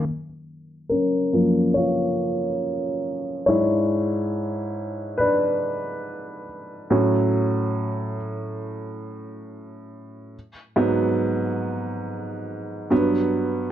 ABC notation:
X:1
M:4/4
L:1/8
Q:"Swing 16ths" 1/4=70
K:F#
V:1 name="Upright piano"
z2 [CA]2 [Ec]4 | [=Ec]4 [=DB]3 z | z8 | z8 |]
V:2 name="Upright piano" clef=bass
z3 [F,,E,A,]4- [F,,E,A,] | [G,,G,=D]8 | [=A,,F,C]3 z4 z | z [G,,F,B,]4- [G,,F,B,] [=G,,F,B,]2 |]